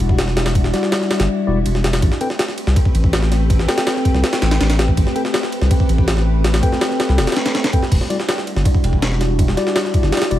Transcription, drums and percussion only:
0.00 ride
0.09 kick
0.19 snare, ride
0.28 snare
0.37 snare, ride
0.46 snare, ride
0.55 kick, ride
0.64 snare
0.74 snare, ride
0.83 snare
0.92 snare, ride
1.01 snare
1.11 snare, ride
1.20 snare, ride
1.66 ride
1.75 snare
1.84 snare, ride
1.93 snare, ride
2.02 kick, ride
2.12 snare
2.21 ride
2.30 snare
2.39 snare, ride
2.48 snare
2.58 ride
2.67 snare
2.76 kick, ride
2.85 kick
2.95 ride
3.04 kick
3.13 snare, ride
3.22 snare
3.32 snare, ride
3.50 kick, ride
3.59 snare
3.69 snare, ride
3.78 snare, ride
3.87 snare, ride
3.96 snare
4.05 kick, ride
4.14 snare
4.24 snare, ride
4.33 snare, ride
4.42 snare, ride
4.51 snare, ride
4.61 snare, ride
4.70 snare, ride
4.79 snare, ride
4.88 kick
4.97 kick, ride
5.07 snare
5.16 ride
5.25 snare
5.34 snare, ride
5.43 snare
5.52 ride
5.62 snare
5.71 kick, ride
5.80 kick
5.89 ride
5.98 kick
6.08 snare, ride
6.17 snare
6.44 snare, ride
6.54 snare, ride
6.63 kick, ride
6.72 snare
6.81 snare, ride
6.91 snare
7.00 snare, ride
7.09 snare
7.18 snare, ride
7.27 snare, ride
7.32 snare, ride
7.37 snare, ride
7.46 snare, ride
7.55 snare, ride
7.64 snare, ride
7.73 kick, ride
7.83 snare
7.92 kick, crash, ride
8.01 snare
8.10 ride
8.20 snare
8.29 snare, ride
8.38 snare
8.47 ride
8.56 snare
8.65 kick, ride
8.74 kick
8.84 ride
8.93 kick
9.02 snare, ride
9.12 snare
9.21 snare, ride
9.39 kick, ride
9.48 snare
9.57 snare, ride
9.67 snare
9.76 snare, ride
9.85 snare
9.94 kick, ride
10.03 snare
10.12 snare, ride
10.17 snare, ride
10.22 snare, ride
10.31 ride

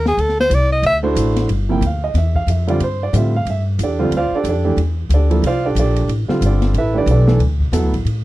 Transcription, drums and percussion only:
0.06 snare
0.18 ride
0.29 snare
0.40 snare
0.51 hi-hat pedal, ride
0.83 ride
1.16 hi-hat pedal, ride
1.36 snare, ride
1.49 ride
1.82 hi-hat pedal, ride
2.15 snare, ride
2.35 kick
2.48 hi-hat pedal, ride
2.68 ride
2.80 ride
3.14 hi-hat pedal, ride
3.46 ride
3.79 hi-hat pedal, ride
4.12 ride
4.45 hi-hat pedal, ride
4.78 ride
5.10 hi-hat pedal, ride
5.31 ride
5.44 ride
5.76 hi-hat pedal, ride
5.96 ride
6.09 ride
6.29 snare
6.42 hi-hat pedal, ride
6.62 snare, ride
6.74 ride
7.07 hi-hat pedal, ride
7.28 snare
7.40 ride
7.60 kick
7.73 snare, hi-hat pedal, ride
7.93 kick, ride
8.06 ride

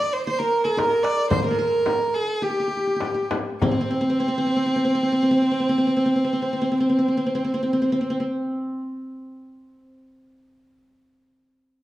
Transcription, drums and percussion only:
0.53 darbuka ka
0.65 darbuka ka
0.79 darbuka tek, frame drum
1.04 darbuka tek
1.31 darbuka dum, frame drum
1.86 darbuka tek, frame drum
2.00 darbuka ka
2.13 darbuka ka
2.28 darbuka ka
2.42 darbuka ka
2.57 darbuka ka
2.71 darbuka ka
3.00 darbuka tek, frame drum
3.15 darbuka ka
3.31 darbuka tek, frame drum
3.62 frame drum, darbuka dum

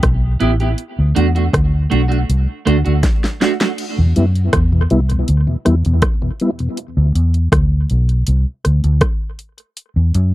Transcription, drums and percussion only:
0.03 kick, cross-stick, closed hi-hat
0.40 closed hi-hat
0.60 closed hi-hat
0.78 closed hi-hat
1.16 closed hi-hat
1.36 closed hi-hat
1.53 kick, cross-stick, closed hi-hat
1.92 closed hi-hat
2.12 closed hi-hat
2.30 closed hi-hat
2.67 cross-stick, closed hi-hat
2.86 closed hi-hat
3.03 kick, snare, closed hi-hat
3.24 snare
3.41 snare, closed hi-hat
3.60 snare, closed hi-hat
3.78 closed hi-hat, crash
4.16 closed hi-hat
4.35 closed hi-hat
4.53 kick, cross-stick, closed hi-hat
4.90 closed hi-hat
5.10 closed hi-hat
5.28 closed hi-hat
5.66 cross-stick, closed hi-hat
5.85 closed hi-hat
6.02 kick, cross-stick, closed hi-hat
6.40 closed hi-hat
6.59 closed hi-hat
6.77 closed hi-hat
7.15 closed hi-hat
7.34 closed hi-hat
7.52 kick, cross-stick, closed hi-hat
7.90 closed hi-hat
8.09 closed hi-hat
8.27 closed hi-hat
8.65 cross-stick, closed hi-hat
8.84 closed hi-hat
9.01 kick, cross-stick, closed hi-hat
9.39 closed hi-hat
9.58 closed hi-hat
9.77 closed hi-hat
10.14 closed hi-hat

